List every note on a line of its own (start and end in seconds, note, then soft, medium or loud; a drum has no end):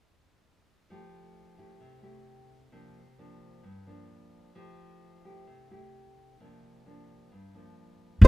0.90 1.79 F3 medium
0.90 1.55 A3 medium
0.90 1.55 E4 medium
0.90 1.55 G4 medium
1.58 2.00 A3 medium
1.58 2.00 E4 soft
1.58 2.00 G4 medium
1.80 2.70 C3 medium
2.02 2.68 A3 medium
2.02 2.68 E4 soft
2.02 2.69 G4 medium
2.72 3.62 C3 medium
2.72 3.02 F3 medium
2.72 3.02 A#3 medium
2.72 3.02 D4 medium
3.19 3.64 F3 medium
3.19 3.64 A#3 soft
3.19 3.64 D4 medium
3.63 4.53 G2 medium
3.87 4.52 F3 medium
3.87 4.52 A#3 medium
3.87 4.52 D4 medium
4.55 5.45 F3 medium
4.55 5.20 A3 soft
4.55 5.21 E4 medium
4.55 5.21 G4 medium
5.24 5.67 A3 soft
5.24 5.67 E4 medium
5.24 5.67 G4 medium
5.47 6.37 C3 medium
5.70 6.36 A3 medium
5.70 6.36 E4 medium
5.70 6.36 G4 medium
6.40 7.29 C3 medium
6.40 6.82 F3 medium
6.40 6.82 A#3 medium
6.40 6.82 D4 medium
6.86 7.31 F3 soft
6.86 7.31 A#3 soft
6.86 7.31 D4 medium
7.32 8.21 G2 medium
7.55 8.19 F3 medium
7.55 8.19 A#3 soft
7.55 8.19 D4 medium
8.21 8.28 F1 medium
8.21 kick medium
8.21 closed hi-hat soft